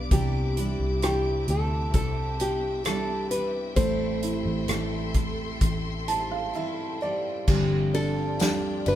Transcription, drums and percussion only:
0.11 kick medium
0.11 closed hi-hat medium
0.57 closed hi-hat medium
1.02 cross-stick medium
1.02 closed hi-hat medium
1.48 closed hi-hat medium
1.94 kick medium
1.94 closed hi-hat medium
2.40 closed hi-hat medium
2.85 cross-stick loud
2.85 closed hi-hat medium
3.31 closed hi-hat medium
3.76 kick medium
3.76 closed hi-hat medium
4.23 closed hi-hat medium
4.68 cross-stick medium
4.68 closed hi-hat medium
5.14 kick medium
5.14 closed hi-hat medium
5.61 kick medium
5.61 closed hi-hat medium
6.08 closed hi-hat medium
7.48 kick medium
7.48 crash medium
7.48 tambourine soft
7.94 ride medium
7.94 tambourine soft
8.40 snare loud
8.40 ride medium
8.40 tambourine medium
8.86 ride medium
8.86 tambourine soft

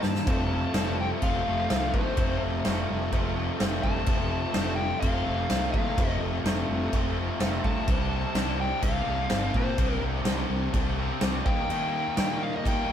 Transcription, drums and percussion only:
0.03 snare loud
0.15 snare medium
0.27 kick loud
0.27 crash medium
0.74 snare loud
0.74 crash medium
1.22 kick loud
1.22 crash medium
1.70 snare loud
1.70 crash medium
1.94 kick medium
2.17 kick loud
2.17 crash medium
2.65 snare loud
2.65 crash medium
3.12 kick medium
3.12 crash medium
3.60 snare loud
3.60 crash medium
3.83 kick medium
4.06 kick loud
4.06 crash medium
4.54 snare loud
4.54 crash medium
5.02 kick medium
5.02 crash medium
5.50 snare loud
5.50 crash medium
5.74 kick medium
5.98 kick loud
5.98 crash medium
6.46 snare loud
6.46 crash medium
6.93 kick loud
6.93 crash medium
7.41 snare loud
7.41 crash medium
7.64 kick medium
7.88 kick loud
7.88 crash medium
8.35 snare loud
8.35 crash medium
8.82 kick medium
8.82 crash medium
9.30 snare loud
9.30 crash medium
9.54 kick medium
9.78 kick loud
9.78 crash medium
10.25 snare loud
10.25 crash medium
10.74 kick medium
10.74 crash medium
11.21 snare loud
11.21 crash medium
11.46 kick loud
11.70 crash medium
12.17 snare loud
12.17 crash medium
12.65 kick medium
12.65 crash medium

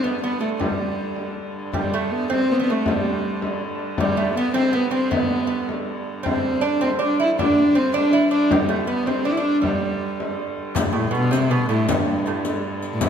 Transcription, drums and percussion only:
0.05 frame drum medium
0.61 frame drum medium
1.16 frame drum soft
1.36 frame drum soft
1.73 frame drum medium
2.31 frame drum medium
2.86 frame drum medium
3.42 frame drum medium
3.98 frame drum medium
4.55 frame drum medium
5.12 frame drum medium
5.69 frame drum medium
6.26 frame drum medium
6.82 frame drum medium
7.39 frame drum medium
7.95 frame drum medium
8.51 frame drum medium
9.06 frame drum medium
9.63 frame drum medium
10.00 frame drum soft
10.20 frame drum medium
10.58 frame drum soft
10.76 riq medium
10.76 frame drum medium
11.15 riq soft
11.32 riq soft
11.32 frame drum medium
11.70 riq soft
11.88 riq medium
11.88 frame drum medium
12.26 riq soft
12.45 riq soft
12.45 frame drum medium
12.82 riq soft
13.01 riq medium
13.01 frame drum medium

